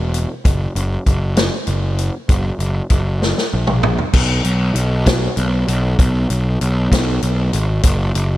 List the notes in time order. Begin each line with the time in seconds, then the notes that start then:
Already playing: E1
0.14 closed hi-hat
0.45 F#1, kick, closed hi-hat
0.75 F#1, closed hi-hat
1.06 F#1, kick, closed hi-hat
1.37 snare, closed hi-hat
1.67 F#1, closed hi-hat
1.98 closed hi-hat
2.29 F#1, kick, closed hi-hat
2.59 F#1, closed hi-hat
2.90 F#1, kick, closed hi-hat
3.22 snare
3.38 snare
3.54 A#1
3.67 mid tom
3.83 mid tom
3.98 floor tom
4.13 B1, kick, crash
4.44 B1, closed hi-hat
4.74 B1, closed hi-hat
5.06 kick, snare, closed hi-hat
5.37 B1, closed hi-hat
5.68 B1, closed hi-hat
5.99 B1, kick, closed hi-hat
6.30 B1, closed hi-hat
6.61 B1, closed hi-hat
6.92 B1, kick, snare, closed hi-hat
7.22 B1, closed hi-hat
7.53 G#1, closed hi-hat
7.83 F#1, kick, closed hi-hat
8.14 F#1, closed hi-hat